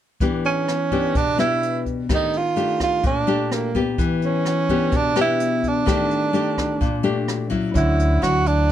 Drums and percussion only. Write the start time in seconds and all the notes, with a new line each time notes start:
0.20 kick, closed hi-hat
0.44 closed hi-hat
0.68 cross-stick, closed hi-hat
0.91 kick, closed hi-hat
1.15 kick, closed hi-hat
1.39 cross-stick, closed hi-hat
1.63 closed hi-hat
1.86 kick, closed hi-hat
2.09 kick, cross-stick, closed hi-hat
2.33 closed hi-hat
2.57 closed hi-hat
2.80 kick, cross-stick, closed hi-hat
3.03 kick, closed hi-hat
3.28 closed hi-hat
3.52 cross-stick, closed hi-hat
3.75 kick, closed hi-hat
3.98 kick, closed hi-hat
4.22 closed hi-hat
4.45 cross-stick, closed hi-hat
4.69 kick, closed hi-hat
4.92 kick, closed hi-hat
5.16 cross-stick, closed hi-hat
5.40 closed hi-hat
5.63 kick, closed hi-hat
5.87 kick, cross-stick, closed hi-hat
6.11 closed hi-hat
6.34 closed hi-hat
6.57 kick, cross-stick, closed hi-hat
6.81 kick, closed hi-hat
7.05 closed hi-hat
7.28 cross-stick, closed hi-hat
7.52 kick, closed hi-hat
7.75 kick, closed hi-hat
7.99 closed hi-hat
8.23 cross-stick, closed hi-hat
8.46 closed hi-hat